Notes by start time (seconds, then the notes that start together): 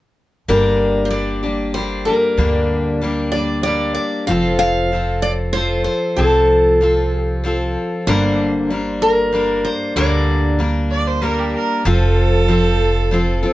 0.48 G1 G2 D3 G3 A#3 D4 G4 A#4
1.05 C5
1.10 G3 A#3 D4 G4 D5
1.43 G3 A#3 D4 G4
1.74 G3 A#3 D4 G4 C5
2.05 A#3 D4 G4 A#4
2.10 G3
2.37 D2 G2 D3 G3 A#3 D4 G4
3.01 G3 A#3 D4 G4
3.32 A#3 D4 G4 D5
3.36 G3
3.63 G3 A#3 D5
3.67 D4 G4
3.95 D5
4.27 F1 F3 C4 F4 A4 F5
4.59 F5
4.92 F3 C4 F4 A4
5.22 D5
5.53 F3 C4 F4 C5
5.57 A4
5.84 C5
6.17 C2 F3 C4 F4 A4
6.81 F3 C4 F4 A4
7.20 G4
7.44 F3 C4 F4 A4
8.07 G1 G2 D3 G3 A#3 D4 A#4 C5
8.71 G3 A#3 D4 A#4
9.02 A#4
9.33 G3 A#3 D4 A#4
9.65 C5
9.96 D2 G2 D3 G3 A#3 D4 A#4 D5
10.59 G3 A#3 D4 A#4
10.91 D5
11.07 C5
11.22 G3 A#3 D4 A#4
11.39 G4
11.55 A#4
11.85 F1 F3 C4 F4 A4
12.48 F3 C4 F4 A4
13.11 F3 C4 F4 A4
13.43 C4 F4 A4